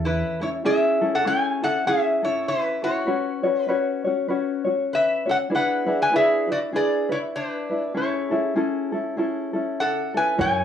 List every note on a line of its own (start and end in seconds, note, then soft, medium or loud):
0.00 0.21 E2 medium
0.00 0.42 C#4 soft
0.00 0.42 E4 soft
0.00 0.40 A4 soft
0.05 0.38 E4 medium
0.05 0.42 B4 medium
0.40 0.64 C#4 soft
0.40 0.48 E4 medium
0.40 0.64 E4 soft
0.40 0.64 A4 soft
0.40 0.49 C#5 medium
0.65 1.01 C#4 medium
0.65 1.01 E4 medium
0.65 1.01 G#4 medium
0.65 1.10 G#4 medium
0.65 1.15 E5 loud
1.01 1.25 C#4 medium
1.01 1.25 E4 medium
1.01 1.24 G#4 medium
1.01 1.25 A4 medium
1.15 1.25 A4 medium
1.15 1.26 F#5 medium
1.25 1.62 C#4 medium
1.25 1.62 E4 medium
1.25 1.62 G#4 medium
1.25 1.61 A4 medium
1.25 1.60 C#5 medium
1.25 1.64 G#5 loud
1.62 1.86 C#4 soft
1.62 1.87 E4 soft
1.62 1.86 A4 soft
1.62 1.85 A4 medium
1.62 1.87 F#5 medium
1.87 2.23 C#4 medium
1.87 2.23 E4 medium
1.87 2.23 G#4 medium
1.87 2.21 G#4 medium
1.87 2.24 E5 medium
2.23 2.84 C#4 soft
2.23 2.83 E4 soft
2.23 2.46 E4 medium
2.23 2.82 A4 soft
2.23 2.48 C#5 medium
2.48 2.82 E4 medium
2.48 2.83 B4 medium
2.83 3.06 C#4 soft
2.83 3.07 E4 soft
2.83 4.01 F#4 medium
2.83 3.07 A4 soft
2.83 3.64 C#5 medium
3.07 3.43 C#4 medium
3.07 3.43 F#4 medium
3.07 3.43 B4 medium
3.07 3.42 C#5 medium
3.43 3.68 C#4 medium
3.43 3.68 F#4 medium
3.43 3.67 B4 medium
3.43 3.68 C#5 medium
3.64 4.01 B4 medium
3.68 4.05 C#4 medium
3.68 4.05 F#4 medium
3.68 4.05 B4 medium
3.68 4.03 C#5 medium
4.04 4.28 C#4 soft
4.04 4.29 F#4 soft
4.04 4.29 C#5 medium
4.28 4.66 C#4 medium
4.28 4.65 F#4 medium
4.28 4.65 B4 medium
4.28 4.63 C#5 medium
4.65 5.26 C#4 soft
4.65 5.25 F#4 soft
4.65 5.25 C#5 medium
4.93 5.26 B4 medium
4.93 5.30 E5 medium
5.26 5.50 C#4 soft
5.26 5.51 F#4 soft
5.26 5.36 A4 medium
5.26 5.50 C#5 soft
5.31 5.37 F#5 medium
5.50 5.86 D4 medium
5.50 5.85 E4 medium
5.50 5.86 G#4 medium
5.50 5.85 B4 medium
5.55 5.98 B4 medium
5.55 6.02 F#5 loud
5.86 6.11 D4 medium
5.86 6.11 E4 medium
5.86 6.10 G#4 medium
5.86 6.11 B4 medium
6.02 6.12 B4 medium
6.02 6.13 G#5 loud
6.11 6.48 D4 medium
6.11 6.47 E4 medium
6.11 6.48 G#4 medium
6.11 6.46 B4 medium
6.16 6.48 G#4 medium
6.16 6.51 E5 medium
6.47 6.72 D4 soft
6.47 6.73 E4 soft
6.47 6.72 B4 medium
6.52 6.58 F#4 medium
6.52 6.58 D5 medium
6.73 7.10 D4 medium
6.73 7.09 E4 medium
6.73 7.09 G#4 medium
6.73 7.08 G#4 medium
6.73 7.08 B4 medium
6.73 7.11 D5 medium
7.09 7.71 D4 soft
7.09 7.70 E4 soft
7.09 7.18 E4 medium
7.09 7.69 B4 soft
7.09 7.18 C#5 medium
7.36 7.92 D4 medium
7.36 7.97 B4 medium
7.70 7.94 D4 soft
7.70 7.94 E4 soft
7.70 7.94 B4 soft
7.94 8.31 C#4 medium
7.94 8.30 E4 medium
7.94 8.53 E4 medium
7.94 8.31 G#4 medium
7.94 8.30 A4 medium
7.94 8.53 C#5 medium
8.31 8.55 C#4 medium
8.31 8.55 E4 medium
8.31 8.54 G#4 medium
8.31 8.55 A4 medium
8.56 8.92 C#4 medium
8.56 8.93 E4 medium
8.56 8.92 G#4 medium
8.56 8.91 A4 medium
8.92 9.17 C#4 soft
8.92 9.17 E4 soft
8.92 9.16 A4 medium
9.17 9.54 C#4 medium
9.17 9.53 E4 medium
9.17 9.53 G#4 medium
9.17 9.52 A4 medium
9.53 10.16 C#4 soft
9.53 10.15 E4 soft
9.53 10.13 A4 medium
9.80 10.13 A4 medium
9.80 10.13 F#5 medium
10.14 10.38 C#4 soft
10.14 10.37 E4 soft
10.14 10.38 A4 medium
10.14 10.38 B4 medium
10.14 10.40 G#5 medium
10.38 10.64 F#2 medium
10.38 10.64 E4 medium
10.38 10.64 F#4 medium
10.38 10.64 A#4 medium
10.38 10.64 C#5 medium
10.38 10.64 G#5 loud